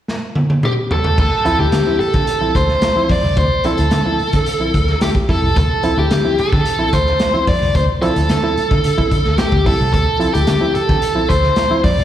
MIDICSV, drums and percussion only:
0, 0, Header, 1, 2, 480
1, 0, Start_track
1, 0, Key_signature, -1, "minor"
1, 0, Tempo, 546448
1, 1037, Time_signature, 4, 2, 24, 8
1, 10578, End_track
2, 0, Start_track
2, 0, Title_t, "Drums"
2, 73, Note_on_c, 9, 38, 55
2, 161, Note_off_c, 9, 38, 0
2, 311, Note_on_c, 9, 48, 69
2, 399, Note_off_c, 9, 48, 0
2, 438, Note_on_c, 9, 48, 71
2, 526, Note_off_c, 9, 48, 0
2, 554, Note_on_c, 9, 47, 83
2, 642, Note_off_c, 9, 47, 0
2, 797, Note_on_c, 9, 43, 99
2, 885, Note_off_c, 9, 43, 0
2, 917, Note_on_c, 9, 43, 98
2, 1004, Note_off_c, 9, 43, 0
2, 1036, Note_on_c, 9, 36, 98
2, 1036, Note_on_c, 9, 49, 82
2, 1124, Note_off_c, 9, 36, 0
2, 1124, Note_off_c, 9, 49, 0
2, 1279, Note_on_c, 9, 42, 66
2, 1367, Note_off_c, 9, 42, 0
2, 1512, Note_on_c, 9, 42, 100
2, 1517, Note_on_c, 9, 38, 93
2, 1600, Note_off_c, 9, 42, 0
2, 1605, Note_off_c, 9, 38, 0
2, 1760, Note_on_c, 9, 46, 42
2, 1848, Note_off_c, 9, 46, 0
2, 1875, Note_on_c, 9, 42, 52
2, 1878, Note_on_c, 9, 38, 37
2, 1881, Note_on_c, 9, 36, 90
2, 1962, Note_off_c, 9, 42, 0
2, 1966, Note_off_c, 9, 38, 0
2, 1969, Note_off_c, 9, 36, 0
2, 1995, Note_on_c, 9, 42, 107
2, 2083, Note_off_c, 9, 42, 0
2, 2240, Note_on_c, 9, 36, 84
2, 2242, Note_on_c, 9, 42, 72
2, 2328, Note_off_c, 9, 36, 0
2, 2329, Note_off_c, 9, 42, 0
2, 2359, Note_on_c, 9, 38, 38
2, 2447, Note_off_c, 9, 38, 0
2, 2472, Note_on_c, 9, 42, 86
2, 2478, Note_on_c, 9, 38, 121
2, 2560, Note_off_c, 9, 42, 0
2, 2566, Note_off_c, 9, 38, 0
2, 2714, Note_on_c, 9, 46, 85
2, 2715, Note_on_c, 9, 38, 35
2, 2719, Note_on_c, 9, 36, 93
2, 2802, Note_off_c, 9, 46, 0
2, 2803, Note_off_c, 9, 38, 0
2, 2806, Note_off_c, 9, 36, 0
2, 2839, Note_on_c, 9, 38, 35
2, 2927, Note_off_c, 9, 38, 0
2, 2957, Note_on_c, 9, 42, 90
2, 2959, Note_on_c, 9, 36, 110
2, 3045, Note_off_c, 9, 42, 0
2, 3047, Note_off_c, 9, 36, 0
2, 3194, Note_on_c, 9, 42, 58
2, 3282, Note_off_c, 9, 42, 0
2, 3316, Note_on_c, 9, 42, 55
2, 3404, Note_off_c, 9, 42, 0
2, 3433, Note_on_c, 9, 42, 86
2, 3438, Note_on_c, 9, 38, 108
2, 3521, Note_off_c, 9, 42, 0
2, 3526, Note_off_c, 9, 38, 0
2, 3680, Note_on_c, 9, 46, 46
2, 3767, Note_off_c, 9, 46, 0
2, 3799, Note_on_c, 9, 42, 60
2, 3802, Note_on_c, 9, 38, 36
2, 3806, Note_on_c, 9, 36, 83
2, 3886, Note_off_c, 9, 42, 0
2, 3890, Note_off_c, 9, 38, 0
2, 3894, Note_off_c, 9, 36, 0
2, 3919, Note_on_c, 9, 42, 101
2, 4006, Note_off_c, 9, 42, 0
2, 4163, Note_on_c, 9, 42, 70
2, 4165, Note_on_c, 9, 36, 83
2, 4251, Note_off_c, 9, 42, 0
2, 4253, Note_off_c, 9, 36, 0
2, 4277, Note_on_c, 9, 38, 36
2, 4365, Note_off_c, 9, 38, 0
2, 4400, Note_on_c, 9, 42, 85
2, 4405, Note_on_c, 9, 38, 113
2, 4488, Note_off_c, 9, 42, 0
2, 4493, Note_off_c, 9, 38, 0
2, 4523, Note_on_c, 9, 36, 85
2, 4610, Note_off_c, 9, 36, 0
2, 4646, Note_on_c, 9, 36, 92
2, 4647, Note_on_c, 9, 46, 73
2, 4734, Note_off_c, 9, 36, 0
2, 4735, Note_off_c, 9, 46, 0
2, 4887, Note_on_c, 9, 36, 107
2, 4887, Note_on_c, 9, 42, 86
2, 4975, Note_off_c, 9, 36, 0
2, 4975, Note_off_c, 9, 42, 0
2, 5121, Note_on_c, 9, 42, 64
2, 5208, Note_off_c, 9, 42, 0
2, 5362, Note_on_c, 9, 42, 88
2, 5367, Note_on_c, 9, 38, 103
2, 5450, Note_off_c, 9, 42, 0
2, 5455, Note_off_c, 9, 38, 0
2, 5606, Note_on_c, 9, 42, 57
2, 5694, Note_off_c, 9, 42, 0
2, 5728, Note_on_c, 9, 38, 36
2, 5731, Note_on_c, 9, 36, 94
2, 5815, Note_off_c, 9, 38, 0
2, 5819, Note_off_c, 9, 36, 0
2, 5845, Note_on_c, 9, 42, 104
2, 5933, Note_off_c, 9, 42, 0
2, 6085, Note_on_c, 9, 42, 64
2, 6086, Note_on_c, 9, 36, 76
2, 6173, Note_off_c, 9, 42, 0
2, 6174, Note_off_c, 9, 36, 0
2, 6204, Note_on_c, 9, 38, 33
2, 6292, Note_off_c, 9, 38, 0
2, 6319, Note_on_c, 9, 42, 84
2, 6324, Note_on_c, 9, 38, 127
2, 6407, Note_off_c, 9, 42, 0
2, 6412, Note_off_c, 9, 38, 0
2, 6565, Note_on_c, 9, 46, 84
2, 6566, Note_on_c, 9, 36, 86
2, 6566, Note_on_c, 9, 38, 40
2, 6653, Note_off_c, 9, 46, 0
2, 6654, Note_off_c, 9, 36, 0
2, 6654, Note_off_c, 9, 38, 0
2, 6687, Note_on_c, 9, 38, 34
2, 6775, Note_off_c, 9, 38, 0
2, 6807, Note_on_c, 9, 36, 107
2, 6808, Note_on_c, 9, 42, 93
2, 6895, Note_off_c, 9, 36, 0
2, 6895, Note_off_c, 9, 42, 0
2, 7045, Note_on_c, 9, 42, 55
2, 7133, Note_off_c, 9, 42, 0
2, 7168, Note_on_c, 9, 42, 61
2, 7256, Note_off_c, 9, 42, 0
2, 7281, Note_on_c, 9, 42, 101
2, 7286, Note_on_c, 9, 38, 99
2, 7369, Note_off_c, 9, 42, 0
2, 7374, Note_off_c, 9, 38, 0
2, 7531, Note_on_c, 9, 42, 64
2, 7619, Note_off_c, 9, 42, 0
2, 7648, Note_on_c, 9, 38, 39
2, 7651, Note_on_c, 9, 36, 91
2, 7736, Note_off_c, 9, 38, 0
2, 7739, Note_off_c, 9, 36, 0
2, 7764, Note_on_c, 9, 42, 94
2, 7852, Note_off_c, 9, 42, 0
2, 7890, Note_on_c, 9, 36, 86
2, 7978, Note_off_c, 9, 36, 0
2, 8005, Note_on_c, 9, 42, 67
2, 8006, Note_on_c, 9, 36, 77
2, 8093, Note_off_c, 9, 42, 0
2, 8094, Note_off_c, 9, 36, 0
2, 8123, Note_on_c, 9, 38, 35
2, 8211, Note_off_c, 9, 38, 0
2, 8238, Note_on_c, 9, 42, 81
2, 8243, Note_on_c, 9, 38, 117
2, 8325, Note_off_c, 9, 42, 0
2, 8331, Note_off_c, 9, 38, 0
2, 8364, Note_on_c, 9, 36, 83
2, 8452, Note_off_c, 9, 36, 0
2, 8487, Note_on_c, 9, 46, 80
2, 8488, Note_on_c, 9, 36, 91
2, 8575, Note_off_c, 9, 46, 0
2, 8576, Note_off_c, 9, 36, 0
2, 8728, Note_on_c, 9, 36, 99
2, 8731, Note_on_c, 9, 42, 90
2, 8816, Note_off_c, 9, 36, 0
2, 8818, Note_off_c, 9, 42, 0
2, 8965, Note_on_c, 9, 42, 58
2, 9053, Note_off_c, 9, 42, 0
2, 9086, Note_on_c, 9, 42, 60
2, 9173, Note_off_c, 9, 42, 0
2, 9196, Note_on_c, 9, 42, 94
2, 9201, Note_on_c, 9, 38, 98
2, 9284, Note_off_c, 9, 42, 0
2, 9289, Note_off_c, 9, 38, 0
2, 9441, Note_on_c, 9, 42, 61
2, 9529, Note_off_c, 9, 42, 0
2, 9567, Note_on_c, 9, 36, 103
2, 9568, Note_on_c, 9, 38, 39
2, 9655, Note_off_c, 9, 36, 0
2, 9655, Note_off_c, 9, 38, 0
2, 9678, Note_on_c, 9, 42, 100
2, 9766, Note_off_c, 9, 42, 0
2, 9923, Note_on_c, 9, 36, 80
2, 9925, Note_on_c, 9, 42, 65
2, 10011, Note_off_c, 9, 36, 0
2, 10013, Note_off_c, 9, 42, 0
2, 10040, Note_on_c, 9, 38, 34
2, 10128, Note_off_c, 9, 38, 0
2, 10154, Note_on_c, 9, 42, 86
2, 10159, Note_on_c, 9, 38, 127
2, 10242, Note_off_c, 9, 42, 0
2, 10247, Note_off_c, 9, 38, 0
2, 10400, Note_on_c, 9, 36, 96
2, 10401, Note_on_c, 9, 46, 85
2, 10402, Note_on_c, 9, 38, 38
2, 10487, Note_off_c, 9, 36, 0
2, 10489, Note_off_c, 9, 46, 0
2, 10490, Note_off_c, 9, 38, 0
2, 10523, Note_on_c, 9, 38, 35
2, 10578, Note_off_c, 9, 38, 0
2, 10578, End_track
0, 0, End_of_file